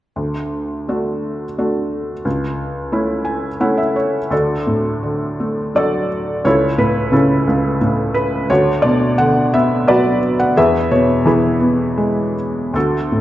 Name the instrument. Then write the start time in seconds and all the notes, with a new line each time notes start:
felt piano
0.16 D2
0.88 A3 D4 F#4
1.58 A3 D4 F#4
2.25 C#2
2.92 A3 C#4 E4
3.25 G#5
3.60 A3 C#4 E4 F#5
3.78 E5
3.96 C#5
4.30 D2 D4 F#4 A4
4.67 A2
5.03 D3
5.40 A3
5.75 F#3 F#4 A4 D5
6.45 C#2 E4 A4 C#5
6.78 A2 B4
7.12 C#3 C#4 E4 A4
7.47 C#2
7.81 A2
8.14 B4
8.50 D2 F#4 C#5
8.82 B2 D5
9.18 D3 F#5
9.53 B3 E5
9.88 F#3 F#4 B4 D5
10.40 F#5
10.57 E2 G#4 B4 E5
10.91 B2 C#5
11.26 E3 E4 G#4 B4
11.60 B3
11.98 G#3
12.74 D2 F#4 A4
13.12 A2